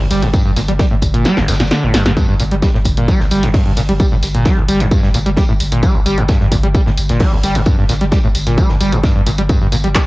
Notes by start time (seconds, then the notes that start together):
0.00 G1
0.10 G1 G3, snare, open hi-hat, tambourine
0.22 G1 G2, closed hi-hat
0.33 G2, kick, closed hi-hat, tambourine
0.45 G1 G2
0.56 G1 A#2, snare, open hi-hat, tambourine
0.68 G1 G3, closed hi-hat
0.79 G3, kick, snare, closed hi-hat, tambourine
0.91 G1 A2
1.02 G1, kick, open hi-hat, tambourine
1.14 G1 A#2, closed hi-hat
1.25 G3, snare, closed hi-hat, tambourine
1.37 G1, snare
1.48 G1 A#2, snare, open hi-hat, tambourine
1.53 snare, tambourine
1.60 G1 A#2, snare, closed hi-hat, tambourine
1.64 snare, tambourine
1.71 D3, snare, closed hi-hat, tambourine
1.82 G1 A2
1.94 G1 G2, snare, open hi-hat, tambourine
2.05 G1 G2, snare, closed hi-hat
2.17 G2, kick, closed hi-hat, tambourine
2.28 G1 G2
2.39 G1 A#2, open hi-hat, tambourine
2.51 G1 G3, closed hi-hat
2.62 G3, kick, snare, closed hi-hat, tambourine
2.74 G1 A2, snare
2.85 G1, kick, open hi-hat, tambourine
2.97 G1 A#2, closed hi-hat
3.08 G3, kick, closed hi-hat, tambourine
3.20 G1, snare
3.31 G1 G3, open hi-hat, tambourine
3.43 G1 G2, snare, closed hi-hat
3.54 G2, kick, snare, closed hi-hat, open hi-hat
3.66 G1 G2
3.76 G1 A#2, snare, open hi-hat, tambourine
3.89 G1 G3, closed hi-hat
4.00 G3, kick, closed hi-hat, tambourine
4.12 G1 A2
4.23 G1, snare, open hi-hat, tambourine
4.34 G1 A#2, closed hi-hat
4.45 G3, kick, snare, closed hi-hat, tambourine
4.57 G1
4.68 G1 G3, open hi-hat, tambourine
4.80 G1 G2, snare, closed hi-hat
4.91 G2, kick, closed hi-hat, tambourine
5.03 G1 G2, snare
5.14 G1 A#2, open hi-hat, tambourine
5.26 G1 G3, closed hi-hat
5.37 G3, kick, snare, closed hi-hat, tambourine
5.49 G1 A2
5.60 G1, open hi-hat, tambourine
5.72 G1 A#2, closed hi-hat
5.83 G3, kick, closed hi-hat, tambourine
5.95 G1
6.06 G1 G3, open hi-hat, tambourine
6.18 G1 G2, closed hi-hat
6.28 G2, kick, snare, closed hi-hat, tambourine
6.40 G1 G2, snare
6.52 G1 A#2, kick, open hi-hat, tambourine
6.63 G1 G3, closed hi-hat
6.75 G3, kick, closed hi-hat, tambourine
6.86 G1 A2, snare
6.98 G1, open hi-hat, tambourine
7.09 G1 A#2, snare, closed hi-hat
7.20 G3, kick, snare, closed hi-hat, open hi-hat
7.32 G1
7.43 G1 G3, snare, open hi-hat, tambourine
7.55 G1 G2, closed hi-hat
7.66 G2, kick, closed hi-hat, tambourine
7.78 G1 G2
7.89 G1 A#2, snare, open hi-hat, tambourine
8.01 G1 G3, closed hi-hat
8.12 G3, kick, snare, closed hi-hat, tambourine
8.24 G1 A2
8.35 G1, open hi-hat, tambourine
8.47 G1 A#2, snare, closed hi-hat
8.58 G3, kick, closed hi-hat, tambourine
8.69 G1, snare
8.81 G1 G3, open hi-hat, tambourine
8.92 G1 G2, closed hi-hat
9.04 G2, kick, snare, closed hi-hat, tambourine
9.15 G1 G2
9.26 G1 A#2, open hi-hat, tambourine
9.38 G1 G3, closed hi-hat
9.49 G2, kick, closed hi-hat, tambourine
9.61 G1 G2
9.72 G1 A#2, open hi-hat, tambourine
9.84 G1 G3, closed hi-hat
9.95 G3, kick, snare, clap, closed hi-hat, tambourine